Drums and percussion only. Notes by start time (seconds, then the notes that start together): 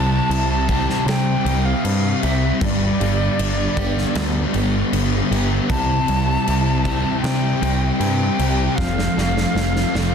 0.31 crash
0.69 kick, crash
0.90 snare
1.08 snare, crash
1.46 crash
1.85 crash
2.23 crash
2.61 kick, crash
3.01 crash
3.39 crash
3.77 kick, crash
3.98 snare
4.15 snare, crash
4.54 crash
4.93 crash
5.32 crash
5.70 kick, crash
6.08 crash
6.47 crash
6.85 kick, crash
7.24 snare, crash
7.63 crash
8.01 crash
8.39 crash
8.78 kick, snare
8.99 snare
9.18 snare
9.37 snare
9.56 snare
9.76 snare
9.95 snare